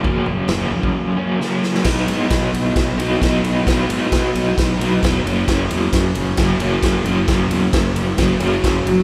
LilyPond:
<<
  \new Staff \with { instrumentName = "Overdriven electric guitar" } { \clef bass \time 4/4 \key b \lydian \tempo 4 = 133 <fis, cis fis ais cis'>8 <fis ais cis'>8 <fis, cis fis ais cis'>8 <fis ais cis'>4 <fis ais cis'>8 <cis fis ais cis'>4 | <b, fis b dis'>2~ <b, fis b dis'>8 <b, fis b dis'>8 <b, fis b dis'>4 | <b, fis b dis'>2~ <b, fis b dis'>8 <b, fis b dis'>8 <b, fis b dis'>8 <fis, cis fis ais cis'>8~ | <fis, cis fis ais cis'>2 <fis, cis fis ais cis'>8 <fis, cis fis ais cis'>4 <fis, cis fis ais cis'>8~ |
<fis, cis fis ais cis'>2 <fis, cis fis ais cis'>8 <fis, cis fis ais cis'>4 r8 | }
  \new Staff \with { instrumentName = "Fingered electric bass" } { \clef bass \time 4/4 \key b \lydian fis,,8 fis,,8 fis,,8 ais,,8 r2 | b,,8 gis,8 b,8 b,,8 b,,8 b,,8 b,,8 b,,8 | b,,8 gis,8 b,8 b,,8 b,,8 b,,8 e,,8 fis,,8 | fis,,8 e,8 fis,8 fis,,8 fis,,8 fis,,8 fis,,8 fis,,8 |
fis,,8 e,8 fis,8 fis,,8 fis,,8 fis,,8 fis,,8 fis,,8 | }
  \new DrumStaff \with { instrumentName = "Drums" } \drummode { \time 4/4 <bd tomfh>8 tomfh8 <sn tomfh>8 tomfh16 bd16 r4 sn8 sn16 sn16 | <cymc bd sn>8 cymr8 <bd cymr sn>8 cymr8 <bd cymr sn>8 cymr8 <bd cymr sn>8 cymr8 | <bd cymr sn>8 cymr8 <bd cymr sn>8 cymr8 <bd cymr sn>8 cymr8 <bd cymr sn>8 cymr8 | <bd cymr sn>8 cymr8 <bd cymr sn>8 cymr8 <bd cymr sn>8 cymr8 <bd cymr sn>8 cymr8 |
<bd cymr sn>8 cymr8 <bd cymr sn>8 cymr8 <bd cymr sn>8 cymr8 <bd cymr sn>8 cymr8 | }
>>